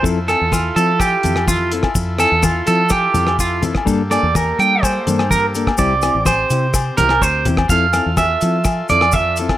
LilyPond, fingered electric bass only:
\new Staff \with { instrumentName = "Fingered electric bass" } { \clef bass \time 4/4 \key f \major \tempo 4 = 125 f,8. e,8. f4 f,4. | f,8. e,8. f4 f,4. | g,8. e,8. g4 g,4. | c,8. a,,8. c4 c,8 d,8 e,8 |
f,8. e,8. f4 f,4. | }